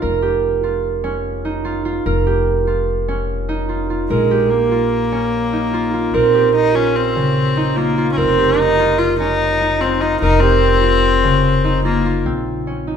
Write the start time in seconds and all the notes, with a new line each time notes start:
Already playing: C#4 D#4 F4 G4
0.02 F1 A#4
0.22 G4
0.63 F4
1.04 C#4
1.45 D#4
1.65 F4
1.85 F4
2.06 F1 A#4
2.27 G4
2.67 F4
3.08 C#4
3.49 D#4
3.69 F4
3.90 F4
4.09 A#1 G#3 A#4
4.31 G4
4.50 A#3
4.71 F4
5.12 C#4
5.53 D#4
5.74 F4
5.94 F4
6.14 A#1 C4 A#4
6.35 G4
6.55 D#4
6.75 C#4 F4
6.96 C4
7.16 C#3
7.57 D#4
7.76 A#3 F4
7.98 F4
8.12 C#4
8.17 F1 C4 A#4
8.39 G4
8.59 D#4
8.79 F4
8.98 F4
9.19 C#4 D#4
9.61 D#4
9.80 C4 F4
10.01 D#4 F4
10.21 F1 D#4 A#4
10.40 C4 G4
10.83 F4
11.24 C#3
11.64 D#4
11.85 A#3 F4
12.06 F4
12.26 A#1 C4
12.67 C#4
12.87 D#4